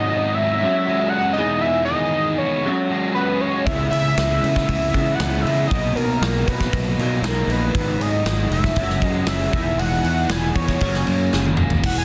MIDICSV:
0, 0, Header, 1, 6, 480
1, 0, Start_track
1, 0, Tempo, 509771
1, 1539, Time_signature, 4, 2, 24, 8
1, 11343, End_track
2, 0, Start_track
2, 0, Title_t, "Analog synth lead"
2, 0, Program_c, 0, 81
2, 0, Note_on_c, 0, 75, 102
2, 324, Note_on_c, 0, 76, 103
2, 338, Note_off_c, 0, 75, 0
2, 1027, Note_on_c, 0, 78, 114
2, 1041, Note_off_c, 0, 76, 0
2, 1247, Note_off_c, 0, 78, 0
2, 1253, Note_on_c, 0, 75, 98
2, 1518, Note_on_c, 0, 76, 109
2, 1532, Note_off_c, 0, 75, 0
2, 1735, Note_off_c, 0, 76, 0
2, 1741, Note_on_c, 0, 75, 108
2, 2239, Note_on_c, 0, 73, 90
2, 2253, Note_off_c, 0, 75, 0
2, 2727, Note_off_c, 0, 73, 0
2, 2960, Note_on_c, 0, 71, 89
2, 3208, Note_on_c, 0, 73, 87
2, 3222, Note_off_c, 0, 71, 0
2, 3439, Note_off_c, 0, 73, 0
2, 3445, Note_on_c, 0, 76, 100
2, 3673, Note_off_c, 0, 76, 0
2, 3677, Note_on_c, 0, 76, 106
2, 4132, Note_off_c, 0, 76, 0
2, 4147, Note_on_c, 0, 76, 112
2, 4846, Note_on_c, 0, 78, 108
2, 4860, Note_off_c, 0, 76, 0
2, 5099, Note_on_c, 0, 76, 101
2, 5113, Note_off_c, 0, 78, 0
2, 5337, Note_off_c, 0, 76, 0
2, 5342, Note_on_c, 0, 75, 106
2, 5605, Note_on_c, 0, 70, 98
2, 5619, Note_off_c, 0, 75, 0
2, 6088, Note_on_c, 0, 71, 86
2, 6102, Note_off_c, 0, 70, 0
2, 6573, Note_off_c, 0, 71, 0
2, 6858, Note_on_c, 0, 70, 83
2, 7063, Note_off_c, 0, 70, 0
2, 7071, Note_on_c, 0, 71, 86
2, 7547, Note_on_c, 0, 75, 101
2, 7561, Note_off_c, 0, 71, 0
2, 8014, Note_off_c, 0, 75, 0
2, 8020, Note_on_c, 0, 76, 100
2, 8491, Note_off_c, 0, 76, 0
2, 8491, Note_on_c, 0, 75, 100
2, 8704, Note_off_c, 0, 75, 0
2, 8737, Note_on_c, 0, 76, 107
2, 9218, Note_on_c, 0, 78, 110
2, 9232, Note_off_c, 0, 76, 0
2, 9707, Note_on_c, 0, 80, 106
2, 9721, Note_off_c, 0, 78, 0
2, 9934, Note_off_c, 0, 80, 0
2, 9939, Note_on_c, 0, 73, 93
2, 10865, Note_off_c, 0, 73, 0
2, 11164, Note_on_c, 0, 78, 101
2, 11267, Note_off_c, 0, 78, 0
2, 11282, Note_on_c, 0, 80, 86
2, 11343, Note_off_c, 0, 80, 0
2, 11343, End_track
3, 0, Start_track
3, 0, Title_t, "Clean electric guitar"
3, 0, Program_c, 1, 27
3, 0, Note_on_c, 1, 44, 91
3, 0, Note_on_c, 1, 51, 86
3, 0, Note_on_c, 1, 54, 92
3, 0, Note_on_c, 1, 59, 93
3, 0, Note_on_c, 1, 66, 91
3, 554, Note_off_c, 1, 54, 0
3, 561, Note_off_c, 1, 51, 0
3, 563, Note_off_c, 1, 44, 0
3, 565, Note_on_c, 1, 54, 84
3, 571, Note_off_c, 1, 59, 0
3, 577, Note_off_c, 1, 66, 0
3, 577, Note_on_c, 1, 56, 97
3, 585, Note_on_c, 1, 61, 98
3, 588, Note_on_c, 1, 66, 98
3, 1276, Note_off_c, 1, 54, 0
3, 1284, Note_off_c, 1, 56, 0
3, 1286, Note_off_c, 1, 61, 0
3, 1288, Note_off_c, 1, 66, 0
3, 1288, Note_on_c, 1, 59, 94
3, 1296, Note_on_c, 1, 63, 85
3, 1301, Note_on_c, 1, 68, 107
3, 2476, Note_off_c, 1, 59, 0
3, 2480, Note_off_c, 1, 63, 0
3, 2488, Note_on_c, 1, 54, 92
3, 2497, Note_on_c, 1, 56, 87
3, 2502, Note_on_c, 1, 61, 96
3, 2504, Note_off_c, 1, 68, 0
3, 2508, Note_on_c, 1, 66, 104
3, 3437, Note_off_c, 1, 54, 0
3, 3441, Note_off_c, 1, 56, 0
3, 3444, Note_off_c, 1, 61, 0
3, 3447, Note_off_c, 1, 66, 0
3, 3459, Note_on_c, 1, 49, 84
3, 3466, Note_on_c, 1, 56, 92
3, 3476, Note_on_c, 1, 59, 96
3, 3479, Note_on_c, 1, 64, 94
3, 4643, Note_off_c, 1, 49, 0
3, 4646, Note_off_c, 1, 56, 0
3, 4646, Note_off_c, 1, 64, 0
3, 4657, Note_on_c, 1, 64, 82
3, 4667, Note_off_c, 1, 59, 0
3, 4670, Note_on_c, 1, 59, 75
3, 4677, Note_on_c, 1, 56, 66
3, 4681, Note_on_c, 1, 49, 69
3, 4882, Note_off_c, 1, 64, 0
3, 4886, Note_off_c, 1, 49, 0
3, 4892, Note_off_c, 1, 56, 0
3, 4897, Note_on_c, 1, 49, 78
3, 4909, Note_on_c, 1, 56, 83
3, 4911, Note_off_c, 1, 59, 0
3, 4915, Note_on_c, 1, 59, 84
3, 4923, Note_on_c, 1, 64, 93
3, 5362, Note_off_c, 1, 49, 0
3, 5368, Note_off_c, 1, 56, 0
3, 5375, Note_off_c, 1, 64, 0
3, 5384, Note_on_c, 1, 47, 91
3, 5390, Note_on_c, 1, 54, 91
3, 5396, Note_off_c, 1, 59, 0
3, 5400, Note_on_c, 1, 58, 92
3, 5407, Note_on_c, 1, 63, 92
3, 6566, Note_off_c, 1, 63, 0
3, 6568, Note_off_c, 1, 47, 0
3, 6571, Note_off_c, 1, 54, 0
3, 6575, Note_off_c, 1, 58, 0
3, 6578, Note_on_c, 1, 63, 83
3, 6590, Note_on_c, 1, 58, 78
3, 6596, Note_on_c, 1, 54, 71
3, 6601, Note_on_c, 1, 47, 66
3, 6792, Note_off_c, 1, 47, 0
3, 6801, Note_off_c, 1, 54, 0
3, 6803, Note_on_c, 1, 47, 80
3, 6804, Note_off_c, 1, 63, 0
3, 6810, Note_off_c, 1, 58, 0
3, 6813, Note_on_c, 1, 54, 81
3, 6820, Note_on_c, 1, 58, 83
3, 6827, Note_on_c, 1, 63, 79
3, 7277, Note_off_c, 1, 47, 0
3, 7282, Note_off_c, 1, 54, 0
3, 7286, Note_off_c, 1, 58, 0
3, 7286, Note_on_c, 1, 44, 89
3, 7289, Note_off_c, 1, 63, 0
3, 7300, Note_on_c, 1, 51, 94
3, 7301, Note_on_c, 1, 54, 85
3, 7307, Note_on_c, 1, 59, 89
3, 7315, Note_on_c, 1, 63, 101
3, 8240, Note_off_c, 1, 44, 0
3, 8247, Note_off_c, 1, 51, 0
3, 8248, Note_off_c, 1, 54, 0
3, 8250, Note_off_c, 1, 59, 0
3, 8255, Note_off_c, 1, 63, 0
3, 8262, Note_on_c, 1, 54, 85
3, 8268, Note_on_c, 1, 56, 95
3, 8276, Note_on_c, 1, 61, 100
3, 8279, Note_on_c, 1, 66, 110
3, 8968, Note_off_c, 1, 54, 0
3, 8974, Note_on_c, 1, 52, 96
3, 8975, Note_off_c, 1, 61, 0
3, 8977, Note_off_c, 1, 66, 0
3, 8984, Note_off_c, 1, 56, 0
3, 8987, Note_on_c, 1, 59, 96
3, 8994, Note_on_c, 1, 63, 97
3, 8998, Note_on_c, 1, 68, 103
3, 10166, Note_off_c, 1, 52, 0
3, 10173, Note_off_c, 1, 59, 0
3, 10176, Note_off_c, 1, 63, 0
3, 10178, Note_off_c, 1, 68, 0
3, 10187, Note_on_c, 1, 54, 90
3, 10191, Note_on_c, 1, 58, 101
3, 10198, Note_on_c, 1, 61, 101
3, 10209, Note_on_c, 1, 68, 107
3, 11133, Note_off_c, 1, 54, 0
3, 11135, Note_off_c, 1, 58, 0
3, 11138, Note_off_c, 1, 61, 0
3, 11144, Note_off_c, 1, 68, 0
3, 11149, Note_on_c, 1, 52, 69
3, 11343, Note_off_c, 1, 52, 0
3, 11343, End_track
4, 0, Start_track
4, 0, Title_t, "Distorted electric guitar"
4, 0, Program_c, 2, 30
4, 0, Note_on_c, 2, 44, 76
4, 0, Note_on_c, 2, 54, 67
4, 109, Note_on_c, 2, 59, 72
4, 352, Note_on_c, 2, 63, 68
4, 574, Note_off_c, 2, 54, 0
4, 584, Note_off_c, 2, 44, 0
4, 584, Note_off_c, 2, 59, 0
4, 586, Note_on_c, 2, 54, 69
4, 587, Note_off_c, 2, 63, 0
4, 827, Note_on_c, 2, 56, 68
4, 1071, Note_on_c, 2, 61, 66
4, 1301, Note_off_c, 2, 54, 0
4, 1302, Note_on_c, 2, 40, 68
4, 1305, Note_off_c, 2, 61, 0
4, 1528, Note_off_c, 2, 40, 0
4, 1539, Note_on_c, 2, 40, 74
4, 1780, Note_on_c, 2, 51, 62
4, 2005, Note_off_c, 2, 56, 0
4, 2009, Note_on_c, 2, 56, 66
4, 2260, Note_on_c, 2, 59, 67
4, 2494, Note_off_c, 2, 51, 0
4, 2496, Note_off_c, 2, 40, 0
4, 2497, Note_on_c, 2, 54, 69
4, 2498, Note_off_c, 2, 59, 0
4, 2526, Note_off_c, 2, 56, 0
4, 2729, Note_on_c, 2, 56, 68
4, 2970, Note_on_c, 2, 61, 65
4, 3199, Note_off_c, 2, 56, 0
4, 3210, Note_on_c, 2, 56, 64
4, 3452, Note_off_c, 2, 56, 0
4, 3452, Note_off_c, 2, 61, 0
4, 3456, Note_off_c, 2, 54, 0
4, 3465, Note_on_c, 2, 49, 72
4, 3701, Note_on_c, 2, 52, 60
4, 3939, Note_on_c, 2, 56, 66
4, 4178, Note_on_c, 2, 59, 67
4, 4409, Note_off_c, 2, 52, 0
4, 4420, Note_on_c, 2, 52, 71
4, 4649, Note_off_c, 2, 56, 0
4, 4660, Note_off_c, 2, 49, 0
4, 4660, Note_on_c, 2, 56, 68
4, 4895, Note_off_c, 2, 59, 0
4, 4899, Note_on_c, 2, 59, 69
4, 5129, Note_off_c, 2, 56, 0
4, 5140, Note_on_c, 2, 56, 70
4, 5378, Note_off_c, 2, 52, 0
4, 5378, Note_off_c, 2, 56, 0
4, 5381, Note_on_c, 2, 47, 77
4, 5629, Note_on_c, 2, 54, 64
4, 5861, Note_on_c, 2, 58, 67
4, 5890, Note_off_c, 2, 59, 0
4, 6104, Note_on_c, 2, 63, 72
4, 6340, Note_off_c, 2, 54, 0
4, 6351, Note_on_c, 2, 54, 70
4, 6570, Note_off_c, 2, 58, 0
4, 6580, Note_off_c, 2, 47, 0
4, 6582, Note_on_c, 2, 58, 66
4, 6810, Note_off_c, 2, 63, 0
4, 6822, Note_on_c, 2, 63, 72
4, 7049, Note_off_c, 2, 58, 0
4, 7060, Note_on_c, 2, 58, 69
4, 7300, Note_off_c, 2, 58, 0
4, 7301, Note_off_c, 2, 63, 0
4, 7306, Note_off_c, 2, 54, 0
4, 7307, Note_on_c, 2, 44, 78
4, 7555, Note_on_c, 2, 54, 63
4, 7784, Note_on_c, 2, 59, 69
4, 8024, Note_on_c, 2, 63, 67
4, 8252, Note_off_c, 2, 54, 0
4, 8263, Note_off_c, 2, 59, 0
4, 8263, Note_off_c, 2, 63, 0
4, 8264, Note_on_c, 2, 54, 72
4, 8265, Note_off_c, 2, 44, 0
4, 8503, Note_on_c, 2, 56, 74
4, 8749, Note_on_c, 2, 61, 67
4, 8984, Note_off_c, 2, 54, 0
4, 8986, Note_off_c, 2, 61, 0
4, 8989, Note_on_c, 2, 40, 70
4, 9216, Note_off_c, 2, 40, 0
4, 9227, Note_on_c, 2, 40, 75
4, 9466, Note_on_c, 2, 52, 65
4, 9695, Note_off_c, 2, 56, 0
4, 9698, Note_on_c, 2, 59, 70
4, 9945, Note_on_c, 2, 63, 67
4, 10182, Note_off_c, 2, 59, 0
4, 10184, Note_off_c, 2, 52, 0
4, 10185, Note_off_c, 2, 63, 0
4, 10187, Note_off_c, 2, 40, 0
4, 10188, Note_on_c, 2, 54, 72
4, 10424, Note_on_c, 2, 58, 69
4, 10666, Note_on_c, 2, 61, 69
4, 10891, Note_off_c, 2, 58, 0
4, 10903, Note_on_c, 2, 58, 75
4, 11136, Note_on_c, 2, 40, 88
4, 11144, Note_off_c, 2, 54, 0
4, 11144, Note_off_c, 2, 58, 0
4, 11145, Note_on_c, 2, 52, 97
4, 11146, Note_off_c, 2, 61, 0
4, 11148, Note_on_c, 2, 56, 96
4, 11343, Note_off_c, 2, 40, 0
4, 11343, Note_off_c, 2, 52, 0
4, 11343, Note_off_c, 2, 56, 0
4, 11343, End_track
5, 0, Start_track
5, 0, Title_t, "Fingered electric bass"
5, 0, Program_c, 3, 33
5, 3447, Note_on_c, 3, 37, 89
5, 3647, Note_off_c, 3, 37, 0
5, 3684, Note_on_c, 3, 49, 92
5, 3885, Note_off_c, 3, 49, 0
5, 3929, Note_on_c, 3, 37, 87
5, 4128, Note_off_c, 3, 37, 0
5, 4176, Note_on_c, 3, 49, 95
5, 4372, Note_off_c, 3, 49, 0
5, 4407, Note_on_c, 3, 37, 95
5, 4607, Note_off_c, 3, 37, 0
5, 4649, Note_on_c, 3, 49, 84
5, 4848, Note_off_c, 3, 49, 0
5, 4893, Note_on_c, 3, 37, 91
5, 5090, Note_off_c, 3, 37, 0
5, 5126, Note_on_c, 3, 49, 96
5, 5327, Note_off_c, 3, 49, 0
5, 5376, Note_on_c, 3, 35, 93
5, 5573, Note_off_c, 3, 35, 0
5, 5608, Note_on_c, 3, 47, 93
5, 5808, Note_off_c, 3, 47, 0
5, 5850, Note_on_c, 3, 35, 91
5, 6049, Note_off_c, 3, 35, 0
5, 6098, Note_on_c, 3, 47, 97
5, 6294, Note_off_c, 3, 47, 0
5, 6339, Note_on_c, 3, 35, 99
5, 6535, Note_off_c, 3, 35, 0
5, 6575, Note_on_c, 3, 47, 92
5, 6773, Note_off_c, 3, 47, 0
5, 6798, Note_on_c, 3, 35, 92
5, 7003, Note_off_c, 3, 35, 0
5, 7038, Note_on_c, 3, 34, 102
5, 7243, Note_off_c, 3, 34, 0
5, 7295, Note_on_c, 3, 32, 92
5, 7494, Note_off_c, 3, 32, 0
5, 7527, Note_on_c, 3, 44, 92
5, 7729, Note_off_c, 3, 44, 0
5, 7771, Note_on_c, 3, 32, 88
5, 7972, Note_off_c, 3, 32, 0
5, 8013, Note_on_c, 3, 29, 96
5, 8213, Note_off_c, 3, 29, 0
5, 8252, Note_on_c, 3, 30, 100
5, 8453, Note_off_c, 3, 30, 0
5, 8489, Note_on_c, 3, 42, 85
5, 8691, Note_off_c, 3, 42, 0
5, 8724, Note_on_c, 3, 30, 90
5, 8928, Note_off_c, 3, 30, 0
5, 8974, Note_on_c, 3, 28, 101
5, 9174, Note_off_c, 3, 28, 0
5, 9201, Note_on_c, 3, 28, 97
5, 9407, Note_off_c, 3, 28, 0
5, 9450, Note_on_c, 3, 40, 91
5, 9652, Note_off_c, 3, 40, 0
5, 9693, Note_on_c, 3, 28, 92
5, 9894, Note_off_c, 3, 28, 0
5, 9937, Note_on_c, 3, 40, 98
5, 10137, Note_off_c, 3, 40, 0
5, 10179, Note_on_c, 3, 30, 100
5, 10378, Note_off_c, 3, 30, 0
5, 10429, Note_on_c, 3, 42, 84
5, 10624, Note_off_c, 3, 42, 0
5, 10673, Note_on_c, 3, 30, 85
5, 10886, Note_off_c, 3, 30, 0
5, 10910, Note_on_c, 3, 28, 85
5, 11124, Note_off_c, 3, 28, 0
5, 11140, Note_on_c, 3, 28, 94
5, 11339, Note_off_c, 3, 28, 0
5, 11343, End_track
6, 0, Start_track
6, 0, Title_t, "Drums"
6, 3452, Note_on_c, 9, 36, 107
6, 3453, Note_on_c, 9, 46, 75
6, 3547, Note_off_c, 9, 36, 0
6, 3547, Note_off_c, 9, 46, 0
6, 3697, Note_on_c, 9, 46, 59
6, 3791, Note_off_c, 9, 46, 0
6, 3931, Note_on_c, 9, 46, 72
6, 3934, Note_on_c, 9, 38, 100
6, 4025, Note_off_c, 9, 46, 0
6, 4028, Note_off_c, 9, 38, 0
6, 4180, Note_on_c, 9, 46, 56
6, 4274, Note_off_c, 9, 46, 0
6, 4296, Note_on_c, 9, 36, 72
6, 4302, Note_on_c, 9, 38, 31
6, 4390, Note_off_c, 9, 36, 0
6, 4397, Note_off_c, 9, 38, 0
6, 4412, Note_on_c, 9, 46, 75
6, 4414, Note_on_c, 9, 36, 90
6, 4506, Note_off_c, 9, 46, 0
6, 4508, Note_off_c, 9, 36, 0
6, 4655, Note_on_c, 9, 36, 71
6, 4658, Note_on_c, 9, 46, 50
6, 4749, Note_off_c, 9, 36, 0
6, 4752, Note_off_c, 9, 46, 0
6, 4893, Note_on_c, 9, 46, 77
6, 4896, Note_on_c, 9, 38, 111
6, 4987, Note_off_c, 9, 46, 0
6, 4990, Note_off_c, 9, 38, 0
6, 5147, Note_on_c, 9, 46, 54
6, 5241, Note_off_c, 9, 46, 0
6, 5377, Note_on_c, 9, 46, 71
6, 5379, Note_on_c, 9, 36, 107
6, 5471, Note_off_c, 9, 46, 0
6, 5473, Note_off_c, 9, 36, 0
6, 5620, Note_on_c, 9, 46, 52
6, 5714, Note_off_c, 9, 46, 0
6, 5860, Note_on_c, 9, 46, 69
6, 5863, Note_on_c, 9, 38, 107
6, 5954, Note_off_c, 9, 46, 0
6, 5957, Note_off_c, 9, 38, 0
6, 6100, Note_on_c, 9, 36, 80
6, 6108, Note_on_c, 9, 46, 53
6, 6194, Note_off_c, 9, 36, 0
6, 6202, Note_off_c, 9, 46, 0
6, 6220, Note_on_c, 9, 36, 73
6, 6226, Note_on_c, 9, 38, 32
6, 6314, Note_off_c, 9, 36, 0
6, 6320, Note_off_c, 9, 38, 0
6, 6339, Note_on_c, 9, 36, 98
6, 6344, Note_on_c, 9, 46, 67
6, 6433, Note_off_c, 9, 36, 0
6, 6438, Note_off_c, 9, 46, 0
6, 6584, Note_on_c, 9, 46, 49
6, 6678, Note_off_c, 9, 46, 0
6, 6815, Note_on_c, 9, 46, 75
6, 6818, Note_on_c, 9, 38, 108
6, 6910, Note_off_c, 9, 46, 0
6, 6912, Note_off_c, 9, 38, 0
6, 7059, Note_on_c, 9, 46, 53
6, 7153, Note_off_c, 9, 46, 0
6, 7296, Note_on_c, 9, 36, 100
6, 7297, Note_on_c, 9, 46, 70
6, 7390, Note_off_c, 9, 36, 0
6, 7391, Note_off_c, 9, 46, 0
6, 7542, Note_on_c, 9, 46, 59
6, 7636, Note_off_c, 9, 46, 0
6, 7776, Note_on_c, 9, 46, 70
6, 7779, Note_on_c, 9, 38, 103
6, 7870, Note_off_c, 9, 46, 0
6, 7873, Note_off_c, 9, 38, 0
6, 8018, Note_on_c, 9, 46, 59
6, 8112, Note_off_c, 9, 46, 0
6, 8135, Note_on_c, 9, 36, 76
6, 8139, Note_on_c, 9, 38, 31
6, 8229, Note_off_c, 9, 36, 0
6, 8233, Note_off_c, 9, 38, 0
6, 8247, Note_on_c, 9, 46, 75
6, 8254, Note_on_c, 9, 36, 96
6, 8341, Note_off_c, 9, 46, 0
6, 8348, Note_off_c, 9, 36, 0
6, 8379, Note_on_c, 9, 38, 30
6, 8474, Note_off_c, 9, 38, 0
6, 8491, Note_on_c, 9, 46, 52
6, 8492, Note_on_c, 9, 36, 73
6, 8586, Note_off_c, 9, 36, 0
6, 8586, Note_off_c, 9, 46, 0
6, 8724, Note_on_c, 9, 46, 79
6, 8727, Note_on_c, 9, 38, 115
6, 8818, Note_off_c, 9, 46, 0
6, 8821, Note_off_c, 9, 38, 0
6, 8973, Note_on_c, 9, 46, 56
6, 8976, Note_on_c, 9, 36, 101
6, 9067, Note_off_c, 9, 46, 0
6, 9071, Note_off_c, 9, 36, 0
6, 9220, Note_on_c, 9, 46, 72
6, 9314, Note_off_c, 9, 46, 0
6, 9457, Note_on_c, 9, 46, 54
6, 9551, Note_off_c, 9, 46, 0
6, 9692, Note_on_c, 9, 46, 72
6, 9695, Note_on_c, 9, 38, 100
6, 9787, Note_off_c, 9, 46, 0
6, 9789, Note_off_c, 9, 38, 0
6, 9936, Note_on_c, 9, 46, 56
6, 9939, Note_on_c, 9, 36, 80
6, 10030, Note_off_c, 9, 46, 0
6, 10034, Note_off_c, 9, 36, 0
6, 10053, Note_on_c, 9, 38, 31
6, 10060, Note_on_c, 9, 36, 72
6, 10147, Note_off_c, 9, 38, 0
6, 10155, Note_off_c, 9, 36, 0
6, 10173, Note_on_c, 9, 46, 70
6, 10182, Note_on_c, 9, 36, 96
6, 10267, Note_off_c, 9, 46, 0
6, 10276, Note_off_c, 9, 36, 0
6, 10302, Note_on_c, 9, 38, 33
6, 10396, Note_off_c, 9, 38, 0
6, 10421, Note_on_c, 9, 46, 51
6, 10515, Note_off_c, 9, 46, 0
6, 10669, Note_on_c, 9, 38, 64
6, 10763, Note_off_c, 9, 38, 0
6, 10786, Note_on_c, 9, 48, 63
6, 10880, Note_off_c, 9, 48, 0
6, 10895, Note_on_c, 9, 45, 80
6, 10989, Note_off_c, 9, 45, 0
6, 11019, Note_on_c, 9, 43, 86
6, 11113, Note_off_c, 9, 43, 0
6, 11145, Note_on_c, 9, 36, 101
6, 11145, Note_on_c, 9, 49, 103
6, 11239, Note_off_c, 9, 36, 0
6, 11239, Note_off_c, 9, 49, 0
6, 11343, End_track
0, 0, End_of_file